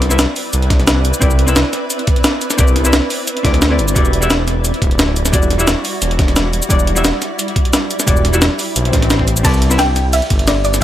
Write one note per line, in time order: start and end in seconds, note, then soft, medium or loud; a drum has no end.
0.00 3.92 C4 medium
0.00 9.41 E4 medium
0.00 3.92 B4 medium
0.00 9.41 D5 medium
0.00 snare soft
0.00 closed hi-hat medium
0.09 0.26 C2 medium
0.09 0.21 C4 loud
0.09 0.21 E4 medium
0.09 0.21 B4 medium
0.09 0.22 E5 loud
0.09 cabasa medium
0.19 snare loud
0.19 closed hi-hat medium
0.19 cabasa soft
0.36 open hi-hat medium
0.36 cabasa soft
0.53 1.12 C2 medium
0.53 closed hi-hat medium
0.53 cabasa soft
0.62 closed hi-hat soft
0.70 kick loud
0.70 snare soft
0.70 closed hi-hat medium
0.80 snare soft
0.80 closed hi-hat soft
0.87 snare loud
0.87 closed hi-hat loud
0.87 cabasa soft
1.05 closed hi-hat medium
1.05 cabasa soft
1.14 closed hi-hat soft
1.14 cabasa medium
1.20 1.47 C2 loud
1.20 1.45 C4 medium
1.20 1.46 E4 medium
1.20 1.46 B4 medium
1.20 1.46 D5 loud
1.20 kick loud
1.20 closed hi-hat medium
1.20 cabasa soft
1.31 cabasa soft
1.39 closed hi-hat medium
1.46 1.63 C2 medium
1.46 1.58 C4 loud
1.46 1.58 E4 medium
1.46 1.59 B4 medium
1.46 1.59 E5 loud
1.46 cabasa medium
1.56 snare loud
1.56 closed hi-hat medium
1.56 cabasa soft
1.73 snare soft
1.73 closed hi-hat medium
1.73 cabasa soft
1.90 closed hi-hat medium
1.90 cabasa soft
1.99 closed hi-hat soft
2.07 kick loud
2.07 closed hi-hat medium
2.16 closed hi-hat soft
2.24 snare loud
2.24 closed hi-hat medium
2.24 cabasa soft
2.41 closed hi-hat medium
2.41 cabasa soft
2.50 snare medium
2.50 closed hi-hat soft
2.50 cabasa medium
2.58 2.84 C2 loud
2.58 2.82 C4 medium
2.58 2.83 E4 medium
2.58 2.83 B4 medium
2.58 2.84 D5 loud
2.58 kick loud
2.58 closed hi-hat loud
2.58 cabasa medium
2.68 cabasa soft
2.76 snare soft
2.76 closed hi-hat medium
2.84 3.01 C2 medium
2.84 2.95 C4 loud
2.84 2.95 E4 medium
2.84 2.96 B4 medium
2.84 2.96 E5 loud
2.84 cabasa medium
2.93 snare loud
2.93 closed hi-hat medium
2.93 cabasa soft
3.10 open hi-hat medium
3.10 cabasa soft
3.27 closed hi-hat medium
3.27 cabasa soft
3.37 closed hi-hat soft
3.43 3.80 D2 medium
3.43 3.68 C4 medium
3.43 3.68 E4 medium
3.43 3.69 B4 medium
3.43 3.69 D5 loud
3.43 kick loud
3.43 snare soft
3.43 closed hi-hat medium
3.54 snare soft
3.54 closed hi-hat soft
3.62 snare loud
3.62 closed hi-hat medium
3.62 cabasa soft
3.69 3.93 C4 medium
3.69 3.94 E4 medium
3.69 3.94 B4 medium
3.69 3.95 D5 medium
3.79 3.94 G1 medium
3.79 closed hi-hat medium
3.79 cabasa soft
3.88 closed hi-hat soft
3.88 cabasa medium
3.94 4.72 E1 loud
3.94 4.19 G3 loud
3.94 9.41 G3 medium
3.94 4.20 E4 medium
3.94 6.68 F#4 medium
3.94 4.20 F#4 medium
3.94 4.21 D5 loud
3.94 kick loud
3.94 closed hi-hat medium
3.94 cabasa medium
4.05 cabasa soft
4.13 closed hi-hat medium
4.21 4.32 G3 medium
4.21 4.32 E4 medium
4.21 4.33 F#4 medium
4.21 4.33 E5 loud
4.21 cabasa medium
4.30 snare loud
4.30 closed hi-hat medium
4.30 cabasa soft
4.48 snare soft
4.48 closed hi-hat medium
4.48 cabasa soft
4.65 closed hi-hat medium
4.65 cabasa soft
4.74 closed hi-hat soft
4.82 5.32 D1 loud
4.82 kick loud
4.82 closed hi-hat medium
4.91 closed hi-hat soft
4.99 snare loud
4.99 closed hi-hat medium
4.99 cabasa soft
5.16 closed hi-hat medium
5.16 cabasa soft
5.25 snare soft
5.25 closed hi-hat soft
5.25 cabasa medium
5.32 5.58 E1 loud
5.32 5.57 G3 loud
5.32 5.57 E4 medium
5.32 5.58 F#4 medium
5.32 5.58 D5 loud
5.32 kick loud
5.32 closed hi-hat medium
5.32 cabasa medium
5.43 cabasa soft
5.51 snare soft
5.51 closed hi-hat medium
5.58 5.75 E1 medium
5.58 5.69 G3 medium
5.58 5.70 E4 medium
5.58 5.70 F#4 medium
5.58 5.71 E5 loud
5.58 cabasa medium
5.67 snare loud
5.67 closed hi-hat medium
5.67 cabasa medium
5.85 open hi-hat medium
5.85 cabasa soft
6.02 6.61 E1 medium
6.02 closed hi-hat medium
6.02 cabasa medium
6.11 closed hi-hat soft
6.19 kick loud
6.19 snare soft
6.19 closed hi-hat medium
6.28 snare soft
6.28 closed hi-hat soft
6.36 snare loud
6.36 closed hi-hat medium
6.36 cabasa medium
6.53 closed hi-hat medium
6.53 cabasa soft
6.62 closed hi-hat soft
6.62 cabasa medium
6.69 6.95 E1 loud
6.69 6.94 G3 loud
6.69 6.94 E4 medium
6.69 6.95 F#4 medium
6.69 9.42 G4 medium
6.69 6.95 D5 loud
6.69 kick loud
6.69 closed hi-hat loud
6.69 cabasa medium
6.80 cabasa soft
6.87 closed hi-hat medium
6.95 7.12 E1 medium
6.95 7.06 G3 loud
6.95 7.07 E4 medium
6.95 7.07 F#4 medium
6.95 7.08 E5 loud
6.95 cabasa medium
7.05 snare loud
7.05 closed hi-hat medium
7.05 cabasa medium
7.22 snare soft
7.22 closed hi-hat medium
7.22 cabasa soft
7.39 closed hi-hat medium
7.39 cabasa medium
7.48 closed hi-hat soft
7.56 kick loud
7.56 closed hi-hat medium
7.65 closed hi-hat soft
7.73 snare loud
7.73 closed hi-hat medium
7.73 cabasa medium
7.91 closed hi-hat medium
7.91 cabasa soft
8.00 snare soft
8.00 closed hi-hat soft
8.00 cabasa medium
8.06 8.32 E1 loud
8.06 8.31 G3 loud
8.06 8.31 E4 medium
8.06 8.32 F#4 medium
8.06 8.32 D5 loud
8.06 kick loud
8.06 closed hi-hat loud
8.06 cabasa medium
8.17 cabasa soft
8.25 snare soft
8.25 closed hi-hat medium
8.32 8.49 E1 medium
8.32 8.44 G3 medium
8.32 8.44 E4 medium
8.32 8.44 F#4 medium
8.32 8.45 E5 loud
8.32 cabasa medium
8.42 snare loud
8.42 closed hi-hat loud
8.42 cabasa medium
8.59 open hi-hat medium
8.59 cabasa soft
8.76 8.91 B1 loud
8.76 closed hi-hat loud
8.76 swell medium
8.76 cabasa soft
8.85 closed hi-hat soft
8.93 9.43 A1 loud
8.93 kick loud
8.93 snare soft
8.93 closed hi-hat medium
8.93 cabasa soft
9.02 snare soft
9.02 closed hi-hat soft
9.10 snare loud
9.10 closed hi-hat medium
9.10 cabasa medium
9.19 kick medium
9.28 closed hi-hat medium
9.28 cabasa soft
9.37 closed hi-hat soft
9.37 cabasa medium
9.43 10.21 C2 loud
9.43 10.84 B3 medium
9.43 9.68 C4 loud
9.43 10.84 C4 medium
9.43 9.68 E4 medium
9.43 10.84 E4 medium
9.43 9.69 B4 medium
9.43 10.84 D5 medium
9.43 9.69 D5 loud
9.43 9.80 A5 loud
9.43 kick loud
9.43 closed hi-hat loud
9.43 ride medium
9.43 cabasa medium
9.54 cabasa soft
9.62 closed hi-hat medium
9.69 9.81 C4 loud
9.69 9.81 E4 medium
9.69 9.81 B4 medium
9.69 9.82 E5 loud
9.69 cabasa medium
9.78 10.14 G5 loud
9.78 snare loud
9.78 closed hi-hat loud
9.78 ride medium
9.78 cabasa soft
9.96 snare soft
9.96 closed hi-hat medium
9.96 cabasa soft
10.13 10.48 E5 loud
10.13 closed hi-hat loud
10.13 ride medium
10.13 cabasa soft
10.22 closed hi-hat soft
10.30 10.81 G1 loud
10.30 kick loud
10.30 closed hi-hat medium
10.39 closed hi-hat soft
10.47 10.55 D5 medium
10.47 snare loud
10.47 closed hi-hat medium
10.47 ride medium
10.47 cabasa medium
10.65 10.82 D5 medium
10.65 closed hi-hat medium
10.65 cabasa soft
10.74 snare medium
10.74 closed hi-hat soft
10.74 cabasa medium